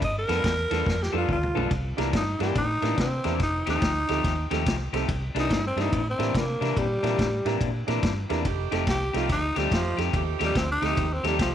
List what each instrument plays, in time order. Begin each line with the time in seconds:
0.02 fingered electric bass G1, tenor saxophone D#5, kick, ride
0.18 tenor saxophone A#4
0.28 fingered electric bass F2, clean electric guitar G3 B3 F4 A4, upright piano B3 D4 F4 A4, snare, ride
0.44 fingered electric bass E2, kick, snare, ride
0.70 fingered electric bass E2, clean electric guitar G3 B3 F4 A4, upright piano B3 D4 F4 A4, snare, ride
0.86 fingered electric bass F2, kick, snare
1.03 tenor saxophone G4, snare
1.12 fingered electric bass F2, clean electric guitar G3 B3 F4 A4, upright piano B3 D4 F4 A4
1.18 tenor saxophone F4
1.28 fingered electric bass D2, tenor saxophone F4, kick, mid tom
1.43 mid tom
1.54 fingered electric bass B1, clean electric guitar G3 B3 F4 A4, upright piano B3 D4 F4 A4, floor tom
1.71 fingered electric bass C2, kick, ride
1.97 fingered electric bass C2, clean electric guitar C3 E3 A#3 D4, upright piano D4 E4 G4 A#4, snare, ride
2.13 fingered electric bass G2, tenor saxophone D#4, kick, snare, ride
2.39 fingered electric bass G2, clean electric guitar C3 E3 A#3 D4, upright piano D4 E4 G4 A#4, tenor saxophone G4, snare, ride
2.55 fingered electric bass A2, tenor saxophone D#4, kick, ride
2.82 fingered electric bass A2, clean electric guitar C3 E3 A#3 D4, upright piano D4 E4 G4 A#4, snare, ride
2.97 fingered electric bass C3, tenor saxophone C4, kick, snare, ride
3.24 fingered electric bass E2, clean electric guitar C3 E3 A#3 D4, upright piano D4 E4 G4 A#4, snare, ride
3.40 fingered electric bass F1, tenor saxophone D#4, kick, snare, ride
3.66 fingered electric bass D#2, clean electric guitar F3 A3 D#4 G4, upright piano C4 D#4 G4 A4, tenor saxophone D#4, snare, ride
3.82 fingered electric bass D2, kick, snare, ride
4.08 fingered electric bass D2, clean electric guitar F3 A3 D#4 G4, upright piano C4 D#4 G4 A4, snare, ride
4.24 fingered electric bass D#2, kick, snare, ride
4.50 fingered electric bass D#2, clean electric guitar F3 A3 D#4 G4, upright piano C4 D#4 G4 A4, snare, ride
4.66 fingered electric bass C2, kick, snare, ride
4.93 fingered electric bass C2, clean electric guitar F3 A3 D#4 G4, upright piano C4 D#4 G4 A4, snare, ride
5.08 fingered electric bass C2, kick, ride
5.35 fingered electric bass C2, clean electric guitar C3 E3 A#3 D4, upright piano D4 E4 G4 A#4, snare, ride
5.40 tenor saxophone D#4
5.50 fingered electric bass G2, kick, snare, ride
5.67 tenor saxophone C4
5.76 fingered electric bass G2, clean electric guitar C3 E3 A#3 D4, upright piano D4 E4 G4 A#4, snare, ride
5.81 tenor saxophone D#4
5.93 fingered electric bass A2, kick, ride
6.10 tenor saxophone C4
6.18 fingered electric bass A2, clean electric guitar C3 E3 A#3 D4, upright piano D4 E4 G4 A#4, snare, ride
6.34 fingered electric bass C3, tenor saxophone A#3, kick, snare, ride
6.61 fingered electric bass C3, clean electric guitar C3 E3 A#3 D4, upright piano D4 E4 G4 A#4, snare, ride
6.77 fingered electric bass A#2, tenor saxophone G3, kick, ride
7.03 fingered electric bass A#2, clean electric guitar C3 E3 A#3 D4, upright piano D4 E4 G4 A#4, snare, ride
7.18 fingered electric bass A2, kick, snare, ride
7.45 fingered electric bass A2, clean electric guitar C3 E3 A#3 D4, upright piano D4 E4 G4 A#4, snare, ride
7.61 fingered electric bass A#2, kick, ride
7.87 fingered electric bass A#2, clean electric guitar C3 E3 A#3 D4, upright piano D4 E4 G4 A#4, snare, ride
8.03 fingered electric bass G2, kick, snare, ride
8.29 fingered electric bass E2, clean electric guitar C3 E3 A#3 D4, upright piano D4 E4 G4 A#4, snare, ride
8.45 fingered electric bass F1, saxophone section A3 D#4 G4, kick, ride
8.71 fingered electric bass F1, clean electric guitar F3 A3 D#4 G4, upright piano C4 D#4 G4 A4, snare, ride
8.87 fingered electric bass C2, tenor saxophone G4, kick, snare, ride
9.13 fingered electric bass C2, clean electric guitar F3 A3 D#4 G4, saxophone section A3 D#4 G4, upright piano C4 D#4 G4 A4, tenor saxophone F4, snare, ride
9.29 fingered electric bass D2, tenor saxophone D#4, kick, snare, ride
9.55 fingered electric bass D2, clean electric guitar F3 A3 D#4 G4, tenor saxophone G3, upright piano C4 D#4 G4 A4, snare, ride
9.64 saxophone section A3 D#4 G4
9.71 fingered electric bass F2, tenor saxophone F3, kick, snare, ride
9.97 fingered electric bass F2, clean electric guitar F3 A3 D#4 G4, upright piano C4 D#4 G4 A4, snare, ride
10.13 fingered electric bass D#2, saxophone section A3 D#4 G4, kick, ride
10.39 fingered electric bass D#2, clean electric guitar F3 A3 D#4 G4, upright piano C4 D#4 G4 A4, snare, ride
10.44 tenor saxophone G3
10.55 fingered electric bass D2, tenor saxophone C4, kick, snare, ride
10.72 tenor saxophone D#4
10.82 fingered electric bass D2, clean electric guitar F3 A3 D#4 G4, saxophone section A3 D#4 G4, upright piano C4 D#4 G4 A4, snare, ride
10.97 fingered electric bass D#2, kick, ride
11.13 tenor saxophone C4
11.23 fingered electric bass D#2, clean electric guitar F3 A3 D#4 G4, upright piano C4 D#4 G4 A4, snare, ride
11.28 tenor saxophone G3, saxophone section A3 D#4 G4
11.39 fingered electric bass C2, tenor saxophone F3, kick, snare, ride